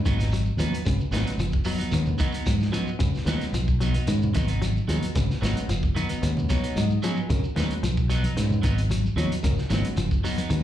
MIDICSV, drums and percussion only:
0, 0, Header, 1, 3, 480
1, 0, Start_track
1, 0, Tempo, 535714
1, 774, Time_signature, 4, 2, 24, 8
1, 9527, End_track
2, 0, Start_track
2, 0, Title_t, "Shekere"
2, 49, Note_on_c, 9, 82, 64
2, 138, Note_off_c, 9, 82, 0
2, 172, Note_on_c, 9, 82, 28
2, 262, Note_off_c, 9, 82, 0
2, 287, Note_on_c, 9, 82, 84
2, 376, Note_off_c, 9, 82, 0
2, 408, Note_on_c, 9, 82, 27
2, 498, Note_off_c, 9, 82, 0
2, 528, Note_on_c, 9, 82, 65
2, 617, Note_off_c, 9, 82, 0
2, 659, Note_on_c, 9, 82, 26
2, 749, Note_off_c, 9, 82, 0
2, 768, Note_on_c, 9, 82, 77
2, 858, Note_off_c, 9, 82, 0
2, 899, Note_on_c, 9, 82, 28
2, 989, Note_off_c, 9, 82, 0
2, 1009, Note_on_c, 9, 82, 67
2, 1098, Note_off_c, 9, 82, 0
2, 1133, Note_on_c, 9, 82, 27
2, 1223, Note_off_c, 9, 82, 0
2, 1245, Note_on_c, 9, 82, 74
2, 1335, Note_off_c, 9, 82, 0
2, 1363, Note_on_c, 9, 82, 26
2, 1452, Note_off_c, 9, 82, 0
2, 1473, Note_on_c, 9, 82, 67
2, 1562, Note_off_c, 9, 82, 0
2, 1602, Note_on_c, 9, 82, 28
2, 1692, Note_off_c, 9, 82, 0
2, 1718, Note_on_c, 9, 82, 83
2, 1808, Note_off_c, 9, 82, 0
2, 1842, Note_on_c, 9, 82, 28
2, 1932, Note_off_c, 9, 82, 0
2, 1959, Note_on_c, 9, 82, 67
2, 2049, Note_off_c, 9, 82, 0
2, 2079, Note_on_c, 9, 82, 26
2, 2169, Note_off_c, 9, 82, 0
2, 2204, Note_on_c, 9, 82, 86
2, 2293, Note_off_c, 9, 82, 0
2, 2329, Note_on_c, 9, 82, 26
2, 2419, Note_off_c, 9, 82, 0
2, 2450, Note_on_c, 9, 82, 64
2, 2540, Note_off_c, 9, 82, 0
2, 2573, Note_on_c, 9, 82, 28
2, 2663, Note_off_c, 9, 82, 0
2, 2694, Note_on_c, 9, 82, 80
2, 2783, Note_off_c, 9, 82, 0
2, 2820, Note_on_c, 9, 82, 30
2, 2909, Note_off_c, 9, 82, 0
2, 2926, Note_on_c, 9, 82, 67
2, 3016, Note_off_c, 9, 82, 0
2, 3056, Note_on_c, 9, 82, 28
2, 3145, Note_off_c, 9, 82, 0
2, 3172, Note_on_c, 9, 82, 78
2, 3262, Note_off_c, 9, 82, 0
2, 3296, Note_on_c, 9, 82, 26
2, 3385, Note_off_c, 9, 82, 0
2, 3415, Note_on_c, 9, 82, 65
2, 3505, Note_off_c, 9, 82, 0
2, 3543, Note_on_c, 9, 82, 27
2, 3632, Note_off_c, 9, 82, 0
2, 3652, Note_on_c, 9, 82, 80
2, 3742, Note_off_c, 9, 82, 0
2, 3781, Note_on_c, 9, 82, 28
2, 3871, Note_off_c, 9, 82, 0
2, 3903, Note_on_c, 9, 82, 62
2, 3992, Note_off_c, 9, 82, 0
2, 4029, Note_on_c, 9, 82, 27
2, 4119, Note_off_c, 9, 82, 0
2, 4148, Note_on_c, 9, 82, 83
2, 4237, Note_off_c, 9, 82, 0
2, 4271, Note_on_c, 9, 82, 28
2, 4360, Note_off_c, 9, 82, 0
2, 4390, Note_on_c, 9, 82, 63
2, 4480, Note_off_c, 9, 82, 0
2, 4518, Note_on_c, 9, 82, 28
2, 4607, Note_off_c, 9, 82, 0
2, 4634, Note_on_c, 9, 82, 82
2, 4723, Note_off_c, 9, 82, 0
2, 4761, Note_on_c, 9, 82, 28
2, 4851, Note_off_c, 9, 82, 0
2, 4874, Note_on_c, 9, 82, 65
2, 4964, Note_off_c, 9, 82, 0
2, 4999, Note_on_c, 9, 82, 27
2, 5089, Note_off_c, 9, 82, 0
2, 5109, Note_on_c, 9, 82, 79
2, 5199, Note_off_c, 9, 82, 0
2, 5238, Note_on_c, 9, 82, 26
2, 5327, Note_off_c, 9, 82, 0
2, 5347, Note_on_c, 9, 82, 66
2, 5437, Note_off_c, 9, 82, 0
2, 5469, Note_on_c, 9, 82, 27
2, 5558, Note_off_c, 9, 82, 0
2, 5584, Note_on_c, 9, 82, 75
2, 5673, Note_off_c, 9, 82, 0
2, 5720, Note_on_c, 9, 82, 29
2, 5809, Note_off_c, 9, 82, 0
2, 5819, Note_on_c, 9, 82, 66
2, 5908, Note_off_c, 9, 82, 0
2, 5947, Note_on_c, 9, 82, 26
2, 6036, Note_off_c, 9, 82, 0
2, 6064, Note_on_c, 9, 82, 79
2, 6154, Note_off_c, 9, 82, 0
2, 6185, Note_on_c, 9, 82, 28
2, 6274, Note_off_c, 9, 82, 0
2, 6299, Note_on_c, 9, 82, 61
2, 6388, Note_off_c, 9, 82, 0
2, 6417, Note_on_c, 9, 82, 28
2, 6506, Note_off_c, 9, 82, 0
2, 6542, Note_on_c, 9, 82, 78
2, 6632, Note_off_c, 9, 82, 0
2, 6666, Note_on_c, 9, 82, 28
2, 6756, Note_off_c, 9, 82, 0
2, 6784, Note_on_c, 9, 82, 64
2, 6873, Note_off_c, 9, 82, 0
2, 6911, Note_on_c, 9, 82, 27
2, 7000, Note_off_c, 9, 82, 0
2, 7026, Note_on_c, 9, 82, 83
2, 7115, Note_off_c, 9, 82, 0
2, 7147, Note_on_c, 9, 82, 26
2, 7236, Note_off_c, 9, 82, 0
2, 7258, Note_on_c, 9, 82, 68
2, 7348, Note_off_c, 9, 82, 0
2, 7397, Note_on_c, 9, 82, 28
2, 7487, Note_off_c, 9, 82, 0
2, 7502, Note_on_c, 9, 82, 81
2, 7592, Note_off_c, 9, 82, 0
2, 7632, Note_on_c, 9, 82, 28
2, 7722, Note_off_c, 9, 82, 0
2, 7748, Note_on_c, 9, 82, 59
2, 7838, Note_off_c, 9, 82, 0
2, 7866, Note_on_c, 9, 82, 28
2, 7956, Note_off_c, 9, 82, 0
2, 7980, Note_on_c, 9, 82, 81
2, 8069, Note_off_c, 9, 82, 0
2, 8115, Note_on_c, 9, 82, 28
2, 8204, Note_off_c, 9, 82, 0
2, 8228, Note_on_c, 9, 82, 62
2, 8317, Note_off_c, 9, 82, 0
2, 8353, Note_on_c, 9, 82, 28
2, 8442, Note_off_c, 9, 82, 0
2, 8456, Note_on_c, 9, 82, 84
2, 8546, Note_off_c, 9, 82, 0
2, 8586, Note_on_c, 9, 82, 28
2, 8676, Note_off_c, 9, 82, 0
2, 8694, Note_on_c, 9, 82, 70
2, 8784, Note_off_c, 9, 82, 0
2, 8819, Note_on_c, 9, 82, 27
2, 8909, Note_off_c, 9, 82, 0
2, 8932, Note_on_c, 9, 82, 73
2, 9022, Note_off_c, 9, 82, 0
2, 9070, Note_on_c, 9, 82, 27
2, 9159, Note_off_c, 9, 82, 0
2, 9186, Note_on_c, 9, 82, 62
2, 9276, Note_off_c, 9, 82, 0
2, 9305, Note_on_c, 9, 82, 28
2, 9395, Note_off_c, 9, 82, 0
2, 9408, Note_on_c, 9, 82, 77
2, 9497, Note_off_c, 9, 82, 0
2, 9527, End_track
3, 0, Start_track
3, 0, Title_t, "Drums"
3, 53, Note_on_c, 9, 36, 69
3, 54, Note_on_c, 9, 63, 88
3, 56, Note_on_c, 9, 42, 48
3, 143, Note_off_c, 9, 36, 0
3, 144, Note_off_c, 9, 63, 0
3, 146, Note_off_c, 9, 42, 0
3, 180, Note_on_c, 9, 64, 63
3, 184, Note_on_c, 9, 42, 53
3, 192, Note_on_c, 9, 38, 27
3, 269, Note_off_c, 9, 64, 0
3, 274, Note_off_c, 9, 42, 0
3, 282, Note_off_c, 9, 38, 0
3, 293, Note_on_c, 9, 63, 76
3, 303, Note_on_c, 9, 42, 64
3, 383, Note_off_c, 9, 63, 0
3, 393, Note_off_c, 9, 42, 0
3, 538, Note_on_c, 9, 42, 51
3, 627, Note_off_c, 9, 42, 0
3, 667, Note_on_c, 9, 42, 51
3, 756, Note_off_c, 9, 42, 0
3, 775, Note_on_c, 9, 36, 83
3, 782, Note_on_c, 9, 63, 31
3, 782, Note_on_c, 9, 64, 78
3, 786, Note_on_c, 9, 42, 67
3, 865, Note_off_c, 9, 36, 0
3, 871, Note_off_c, 9, 63, 0
3, 871, Note_off_c, 9, 64, 0
3, 876, Note_off_c, 9, 42, 0
3, 1024, Note_on_c, 9, 63, 85
3, 1026, Note_on_c, 9, 42, 50
3, 1034, Note_on_c, 9, 38, 69
3, 1114, Note_off_c, 9, 63, 0
3, 1116, Note_off_c, 9, 42, 0
3, 1124, Note_off_c, 9, 38, 0
3, 1142, Note_on_c, 9, 42, 53
3, 1150, Note_on_c, 9, 38, 26
3, 1231, Note_off_c, 9, 42, 0
3, 1239, Note_off_c, 9, 38, 0
3, 1257, Note_on_c, 9, 42, 62
3, 1261, Note_on_c, 9, 63, 31
3, 1347, Note_off_c, 9, 42, 0
3, 1350, Note_off_c, 9, 63, 0
3, 1374, Note_on_c, 9, 36, 68
3, 1464, Note_off_c, 9, 36, 0
3, 1492, Note_on_c, 9, 46, 62
3, 1582, Note_off_c, 9, 46, 0
3, 1615, Note_on_c, 9, 63, 71
3, 1622, Note_on_c, 9, 42, 50
3, 1705, Note_off_c, 9, 63, 0
3, 1711, Note_off_c, 9, 42, 0
3, 1734, Note_on_c, 9, 42, 67
3, 1738, Note_on_c, 9, 63, 32
3, 1823, Note_off_c, 9, 42, 0
3, 1827, Note_off_c, 9, 63, 0
3, 1857, Note_on_c, 9, 64, 70
3, 1946, Note_off_c, 9, 64, 0
3, 1971, Note_on_c, 9, 36, 66
3, 1971, Note_on_c, 9, 63, 89
3, 1973, Note_on_c, 9, 42, 45
3, 2060, Note_off_c, 9, 63, 0
3, 2061, Note_off_c, 9, 36, 0
3, 2063, Note_off_c, 9, 42, 0
3, 2100, Note_on_c, 9, 42, 48
3, 2189, Note_off_c, 9, 42, 0
3, 2214, Note_on_c, 9, 36, 56
3, 2216, Note_on_c, 9, 63, 73
3, 2218, Note_on_c, 9, 42, 56
3, 2304, Note_off_c, 9, 36, 0
3, 2306, Note_off_c, 9, 63, 0
3, 2308, Note_off_c, 9, 42, 0
3, 2342, Note_on_c, 9, 63, 64
3, 2346, Note_on_c, 9, 38, 24
3, 2432, Note_off_c, 9, 63, 0
3, 2435, Note_off_c, 9, 38, 0
3, 2452, Note_on_c, 9, 42, 47
3, 2541, Note_off_c, 9, 42, 0
3, 2686, Note_on_c, 9, 42, 62
3, 2691, Note_on_c, 9, 36, 85
3, 2703, Note_on_c, 9, 63, 31
3, 2703, Note_on_c, 9, 64, 76
3, 2776, Note_off_c, 9, 42, 0
3, 2781, Note_off_c, 9, 36, 0
3, 2793, Note_off_c, 9, 63, 0
3, 2793, Note_off_c, 9, 64, 0
3, 2833, Note_on_c, 9, 38, 27
3, 2923, Note_off_c, 9, 38, 0
3, 2930, Note_on_c, 9, 42, 49
3, 2938, Note_on_c, 9, 38, 70
3, 2941, Note_on_c, 9, 63, 89
3, 3020, Note_off_c, 9, 42, 0
3, 3028, Note_off_c, 9, 38, 0
3, 3031, Note_off_c, 9, 63, 0
3, 3058, Note_on_c, 9, 42, 45
3, 3066, Note_on_c, 9, 38, 27
3, 3147, Note_off_c, 9, 42, 0
3, 3155, Note_off_c, 9, 38, 0
3, 3172, Note_on_c, 9, 42, 65
3, 3261, Note_off_c, 9, 42, 0
3, 3297, Note_on_c, 9, 36, 67
3, 3387, Note_off_c, 9, 36, 0
3, 3410, Note_on_c, 9, 42, 47
3, 3425, Note_on_c, 9, 63, 67
3, 3500, Note_off_c, 9, 42, 0
3, 3514, Note_off_c, 9, 63, 0
3, 3533, Note_on_c, 9, 42, 50
3, 3549, Note_on_c, 9, 63, 73
3, 3623, Note_off_c, 9, 42, 0
3, 3638, Note_off_c, 9, 63, 0
3, 3648, Note_on_c, 9, 42, 66
3, 3737, Note_off_c, 9, 42, 0
3, 3794, Note_on_c, 9, 64, 80
3, 3884, Note_off_c, 9, 64, 0
3, 3892, Note_on_c, 9, 42, 47
3, 3895, Note_on_c, 9, 36, 66
3, 3914, Note_on_c, 9, 63, 96
3, 3982, Note_off_c, 9, 42, 0
3, 3985, Note_off_c, 9, 36, 0
3, 4003, Note_off_c, 9, 63, 0
3, 4015, Note_on_c, 9, 42, 52
3, 4037, Note_on_c, 9, 64, 64
3, 4104, Note_off_c, 9, 42, 0
3, 4127, Note_off_c, 9, 64, 0
3, 4139, Note_on_c, 9, 42, 60
3, 4153, Note_on_c, 9, 63, 72
3, 4229, Note_off_c, 9, 42, 0
3, 4243, Note_off_c, 9, 63, 0
3, 4273, Note_on_c, 9, 63, 63
3, 4363, Note_off_c, 9, 63, 0
3, 4380, Note_on_c, 9, 42, 56
3, 4469, Note_off_c, 9, 42, 0
3, 4503, Note_on_c, 9, 42, 53
3, 4592, Note_off_c, 9, 42, 0
3, 4617, Note_on_c, 9, 42, 72
3, 4620, Note_on_c, 9, 36, 82
3, 4626, Note_on_c, 9, 63, 31
3, 4626, Note_on_c, 9, 64, 80
3, 4706, Note_off_c, 9, 42, 0
3, 4710, Note_off_c, 9, 36, 0
3, 4716, Note_off_c, 9, 63, 0
3, 4716, Note_off_c, 9, 64, 0
3, 4754, Note_on_c, 9, 38, 26
3, 4843, Note_off_c, 9, 38, 0
3, 4869, Note_on_c, 9, 63, 89
3, 4871, Note_on_c, 9, 42, 49
3, 4880, Note_on_c, 9, 38, 64
3, 4958, Note_off_c, 9, 63, 0
3, 4961, Note_off_c, 9, 42, 0
3, 4969, Note_off_c, 9, 38, 0
3, 4989, Note_on_c, 9, 42, 53
3, 5079, Note_off_c, 9, 42, 0
3, 5100, Note_on_c, 9, 42, 69
3, 5107, Note_on_c, 9, 63, 30
3, 5189, Note_off_c, 9, 42, 0
3, 5197, Note_off_c, 9, 63, 0
3, 5223, Note_on_c, 9, 36, 70
3, 5313, Note_off_c, 9, 36, 0
3, 5343, Note_on_c, 9, 42, 50
3, 5346, Note_on_c, 9, 63, 67
3, 5433, Note_off_c, 9, 42, 0
3, 5436, Note_off_c, 9, 63, 0
3, 5459, Note_on_c, 9, 42, 50
3, 5474, Note_on_c, 9, 63, 73
3, 5549, Note_off_c, 9, 42, 0
3, 5564, Note_off_c, 9, 63, 0
3, 5581, Note_on_c, 9, 42, 69
3, 5587, Note_on_c, 9, 63, 33
3, 5671, Note_off_c, 9, 42, 0
3, 5676, Note_off_c, 9, 63, 0
3, 5708, Note_on_c, 9, 64, 81
3, 5797, Note_off_c, 9, 64, 0
3, 5823, Note_on_c, 9, 42, 47
3, 5824, Note_on_c, 9, 36, 69
3, 5828, Note_on_c, 9, 63, 91
3, 5831, Note_on_c, 9, 38, 24
3, 5913, Note_off_c, 9, 36, 0
3, 5913, Note_off_c, 9, 42, 0
3, 5918, Note_off_c, 9, 63, 0
3, 5921, Note_off_c, 9, 38, 0
3, 5948, Note_on_c, 9, 42, 53
3, 6038, Note_off_c, 9, 42, 0
3, 6065, Note_on_c, 9, 63, 77
3, 6066, Note_on_c, 9, 42, 60
3, 6155, Note_off_c, 9, 63, 0
3, 6156, Note_off_c, 9, 42, 0
3, 6303, Note_on_c, 9, 42, 51
3, 6393, Note_off_c, 9, 42, 0
3, 6543, Note_on_c, 9, 36, 88
3, 6543, Note_on_c, 9, 42, 63
3, 6546, Note_on_c, 9, 63, 33
3, 6546, Note_on_c, 9, 64, 73
3, 6633, Note_off_c, 9, 36, 0
3, 6633, Note_off_c, 9, 42, 0
3, 6636, Note_off_c, 9, 63, 0
3, 6636, Note_off_c, 9, 64, 0
3, 6776, Note_on_c, 9, 63, 87
3, 6783, Note_on_c, 9, 42, 43
3, 6791, Note_on_c, 9, 38, 66
3, 6865, Note_off_c, 9, 63, 0
3, 6872, Note_off_c, 9, 42, 0
3, 6880, Note_off_c, 9, 38, 0
3, 6905, Note_on_c, 9, 42, 45
3, 6994, Note_off_c, 9, 42, 0
3, 7019, Note_on_c, 9, 63, 32
3, 7020, Note_on_c, 9, 42, 63
3, 7109, Note_off_c, 9, 42, 0
3, 7109, Note_off_c, 9, 63, 0
3, 7145, Note_on_c, 9, 36, 67
3, 7234, Note_off_c, 9, 36, 0
3, 7260, Note_on_c, 9, 42, 48
3, 7350, Note_off_c, 9, 42, 0
3, 7380, Note_on_c, 9, 63, 74
3, 7382, Note_on_c, 9, 42, 47
3, 7470, Note_off_c, 9, 63, 0
3, 7471, Note_off_c, 9, 42, 0
3, 7502, Note_on_c, 9, 42, 66
3, 7510, Note_on_c, 9, 38, 29
3, 7591, Note_off_c, 9, 42, 0
3, 7599, Note_off_c, 9, 38, 0
3, 7619, Note_on_c, 9, 64, 78
3, 7709, Note_off_c, 9, 64, 0
3, 7733, Note_on_c, 9, 63, 91
3, 7737, Note_on_c, 9, 42, 49
3, 7741, Note_on_c, 9, 36, 69
3, 7823, Note_off_c, 9, 63, 0
3, 7826, Note_off_c, 9, 42, 0
3, 7830, Note_off_c, 9, 36, 0
3, 7870, Note_on_c, 9, 42, 51
3, 7960, Note_off_c, 9, 42, 0
3, 7969, Note_on_c, 9, 63, 75
3, 7986, Note_on_c, 9, 42, 63
3, 8059, Note_off_c, 9, 63, 0
3, 8076, Note_off_c, 9, 42, 0
3, 8093, Note_on_c, 9, 63, 66
3, 8183, Note_off_c, 9, 63, 0
3, 8224, Note_on_c, 9, 42, 55
3, 8314, Note_off_c, 9, 42, 0
3, 8351, Note_on_c, 9, 42, 50
3, 8440, Note_off_c, 9, 42, 0
3, 8459, Note_on_c, 9, 42, 65
3, 8460, Note_on_c, 9, 36, 84
3, 8463, Note_on_c, 9, 63, 32
3, 8463, Note_on_c, 9, 64, 80
3, 8548, Note_off_c, 9, 42, 0
3, 8549, Note_off_c, 9, 36, 0
3, 8553, Note_off_c, 9, 63, 0
3, 8553, Note_off_c, 9, 64, 0
3, 8589, Note_on_c, 9, 38, 25
3, 8678, Note_off_c, 9, 38, 0
3, 8694, Note_on_c, 9, 63, 86
3, 8703, Note_on_c, 9, 42, 51
3, 8711, Note_on_c, 9, 38, 66
3, 8783, Note_off_c, 9, 63, 0
3, 8793, Note_off_c, 9, 42, 0
3, 8801, Note_off_c, 9, 38, 0
3, 8823, Note_on_c, 9, 42, 49
3, 8912, Note_off_c, 9, 42, 0
3, 8932, Note_on_c, 9, 42, 64
3, 8936, Note_on_c, 9, 63, 32
3, 9022, Note_off_c, 9, 42, 0
3, 9026, Note_off_c, 9, 63, 0
3, 9060, Note_on_c, 9, 36, 68
3, 9150, Note_off_c, 9, 36, 0
3, 9176, Note_on_c, 9, 63, 66
3, 9181, Note_on_c, 9, 46, 59
3, 9266, Note_off_c, 9, 63, 0
3, 9270, Note_off_c, 9, 46, 0
3, 9300, Note_on_c, 9, 63, 76
3, 9301, Note_on_c, 9, 42, 50
3, 9390, Note_off_c, 9, 63, 0
3, 9391, Note_off_c, 9, 42, 0
3, 9413, Note_on_c, 9, 42, 70
3, 9502, Note_off_c, 9, 42, 0
3, 9527, End_track
0, 0, End_of_file